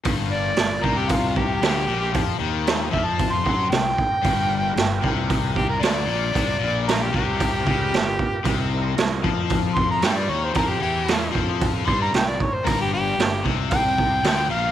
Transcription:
<<
  \new Staff \with { instrumentName = "Harmonica" } { \time 4/4 \key c \major \tempo 4 = 114 r8 d''4 ais'16 g'16 f'8 g'4.~ | g'8 r4 e''16 a''8 c'''8. g''4~ | g''2 r8 g'16 ais'16 d''4~ | d''4 ais'16 g'16 g'2~ g'8~ |
g'8 r2 c'''16 bes''16 g''16 d''16 cis''16 c''16 | ais'16 g'16 g'4 r4 c'''16 ais''16 g''16 d''16 cis''16 c''16 | ais'16 g'16 g'4 r8 g''4. f''8 | }
  \new Staff \with { instrumentName = "Tonewheel organ" } { \time 4/4 \key c \major \tuplet 3/2 { <c' fis' aes' b'>8 <b f' g' ais'>4~ } <b f' g' ais'>2. | <c' ees' g' bes'>1 | <f' g' ais' b'>1~ | <f' g' ais' b'>1 |
<c' dis' e' bes'>1 | <cis' e' g' ais'>1 | <b f' g' ais''>1 | }
  \new Staff \with { instrumentName = "Overdriven electric guitar" } { \clef bass \time 4/4 \key c \major g,4 g,8 c4. d8 ais,8 | f8 ees4 f4 fis8 c8 r8 | g,4 g,8 c4. d8 ais,8 | c8 ais,4 c4 cis8 g,8 r8 |
c4 c8 f4. g8 dis8 | f8 e4 f4 g8 cis8 r8 | g,4 g,8 c4. d8 ais,8 | }
  \new Staff \with { instrumentName = "Fingered electric bass" } { \clef bass \time 4/4 \key c \major g,,4 g,,8 c,4. d,8 ais,,8 | f,8 ees,4 f,4 fis,8 c,8 r8 | g,,4 g,,8 c,4. d,8 ais,,8 | c,8 ais,,4 c,4 cis,8 g,,8 r8 |
c,4 c,8 f,4. g,8 dis,8 | f,8 e,4 f,4 g,8 c,8 r8 | g,,4 g,,8 c,4. d,8 ais,,8 | }
  \new DrumStaff \with { instrumentName = "Drums" } \drummode { \time 4/4 <hho bd>4 <hho sn>8 bd8 <hho bd>8 bd8 <hho sn>4 | <hho bd>4 <hho sn>8 bd8 <hho bd>8 bd8 <hho sn>8 bd8 | <hho bd>4 <hho sn>8 bd8 <hho bd>8 bd8 <hho sn>4 | <hho bd>4 <hho sn>8 bd8 <hho bd>8 bd8 <hho sn>8 bd8 |
<hho bd>4 <hho sn>8 bd8 <hho bd>8 bd8 <hho sn>4 | <hho bd>4 <hho sn>8 bd8 <hho bd>8 bd8 <hho sn>8 bd8 | <hho bd>4 <hho sn>8 bd8 <hho bd>8 bd8 <hho sn>4 | }
>>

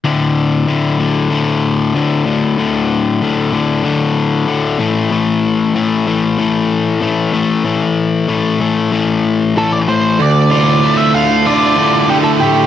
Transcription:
<<
  \new Staff \with { instrumentName = "Lead electric guitar" } { \time 4/4 \key d \minor \tempo 4 = 95 r1 | r1 | r1 | r2. a'16 d''16 c''8 |
d''8 d''8. e''16 f''8 d''4 g'16 a'16 g'8 | }
  \new Staff \with { instrumentName = "Distorted electric guitar" } { \clef bass \time 4/4 \key d \minor r1 | r1 | r1 | r1 |
d,8 a,8 d8 a8 d8 a,8 d8 a8 | }
  \new Staff \with { instrumentName = "Overdriven electric guitar" } { \clef bass \time 4/4 \key d \minor <d, a, d>4 <d, a, d>8 <d, a, d>8 <d, a, d>4 <d, a, d>8 <d, a, d>8 | <d, a, d>4 <d, a, d>8 <d, a, d>8 <d, a, d>4 <d, a, d>8 <a, e a>8 | <a, e a>4 <a, e a>8 <a, e a>8 <a, e a>4 <a, e a>8 <a, e a>8 | <a, e a>4 <a, e a>8 <a, e a>8 <a, e a>4 <a, e a>8 <a, e a>8 |
d,8 f'8 a8 d8 f'8 d8 a8 a,8 | }
>>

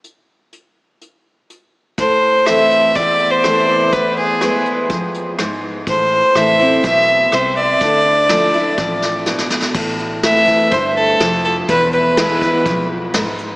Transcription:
<<
  \new Staff \with { instrumentName = "Fiddle" } { \time 4/4 \key a \minor \tempo 4 = 124 r1 | c''4 e''4 d''8. c''4~ c''16 | b'8 gis'4 r2 r8 | c''4 e''4 e''4 c''8 d''8~ |
d''2. r4 | r4 e''4 c''8 a'4 a'8 | b'8 b'2 r4. | }
  \new Staff \with { instrumentName = "Steel-string acoustic guitar" } { \clef bass \time 4/4 \key a \minor << { r1 | r4 <e a c' e'>4 r4 <e a c' e'>4 | r4 <e gis b e'>4 r2 | r4 <e a c' e'>8 <c' e'>8 r2 |
r4 <f a d' e'>8 <d' e'>8 r2 | r4 <e a c' e'>4 r2 | r4 <e gis b e'>4 r2 | } \\ { r1 | a,2 e,2 | e,2 f,4 gis,4 | a,2 b,4 c4 |
d2 f,4 b,4 | a,2 g,4 f,4 | e,2 f,4 gis,4 | } >> }
  \new Staff \with { instrumentName = "Fingered electric bass" } { \clef bass \time 4/4 \key a \minor r1 | r1 | r1 | a,,4 a,,4 b,,4 c,4 |
d,2 a,,2 | a,,2 g,,4 f,,4 | e,,2 b,,2 | }
  \new DrumStaff \with { instrumentName = "Drums" } \drummode { \time 4/4 hh4 hh4 hh4 hh4 | <hh bd>4 <hh ss>8 hh8 <hh bd>8 hh8 <hh ss>4 | <hh bd>4 <hh ss>8 hh8 <hh bd>8 hh8 <hh ss>4 | <hh bd>4 <hh ss>8 hh8 <hh bd>8 hh8 <hh ss>4 |
<hh bd>4 sn8 hh8 <bd sn>8 sn8 sn16 sn16 sn16 sn16 | <cymc bd>8 hh8 <hh sn>8 <hh bd>8 <hh bd>4 <hh sn>8 hh8 | <hh bd>8 hh8 <hh sn>8 <hh bd>8 <hh bd>4 <hh sn>8 hh8 | }
>>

